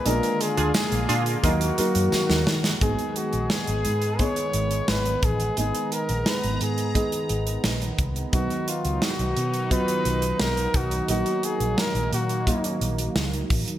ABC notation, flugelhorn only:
X:1
M:4/4
L:1/8
Q:1/4=87
K:Abdor
V:1 name="Flugelhorn"
B A A z G3 z | A G A2 d2 c A | A B c A2 z3 | ^F =F ^F2 =B2 _B F |
G A B G2 z3 |]